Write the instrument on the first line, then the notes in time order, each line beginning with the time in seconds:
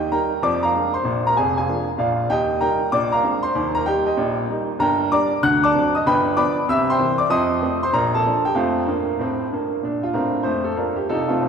grand piano
Already playing: D#2 D#3 G4 D#5 G5
0.12 G3 A#3 D#4 A#4 G5 A#5
0.42 F2 F3 D5 D6
0.63 A#4 F5 A#5
0.75 G#3 A#3 D4
0.94 C5 C6
1.04 A#1 A#2
1.27 A#4 A#5
1.37 F1 F2 G#4 G#5
1.57 G#4 F5 G#5
1.69 F3 A#3 D4
1.98 A#1 A#2 F4 D5 F5
2.29 D#2 D#3 G4 D#5 G5
2.61 G3 A#3 D#4 A#4 G5 A#5
2.92 A#1 A#2 D5 D6
3.12 A#4 F5 A#5
3.24 G#3 C4 D4
3.43 C5 C6
3.55 D#2 D#3
3.75 A#4 A#5
3.86 G3 A#3 D#4 G4 G5
4.06 G4 D#5 G5
4.17 A#1 A#2
4.50 G3 A#3 D#4
4.79 G1 G2 A#4 G5 A#5
5.12 G3 A#3 D4 D5 A#5 D6
5.42 D2 D3 F#5 F#6
5.64 D5 A5 D6
5.75 F#3 C4 D4
5.95 D#5 D#6
6.06 G1 G2 B4 G5 B5
6.36 F3 B3 D4 D5 B5 D6
6.69 C2 C3 E5 E6
6.90 C5 G5 C6
6.99 E3 A#3 C4
7.18 D5 D6
7.30 F2 F3 D#5 C6 D#6
7.62 F3 A3 C4
7.83 C5 C6
7.93 A#1 A#2 A#4 A#5
8.14 A4 A5
8.26 F3 A#3 D4
8.45 G4 G5
8.54 F2 A3 F4 C5 F5
8.86 G2 A#3
9.19 A2 C4
9.51 G2 A#3
9.83 A#2 D4
10.03 F4
10.13 A2 C4 D4 F4 A#4
10.43 F2 A3 C5
10.64 A4
10.77 G2 A#3 D4 F4 A#4
10.96 G4
11.09 F1 F2 D#4 F4 A4
11.29 A3 C4 F4
11.41 C1 C2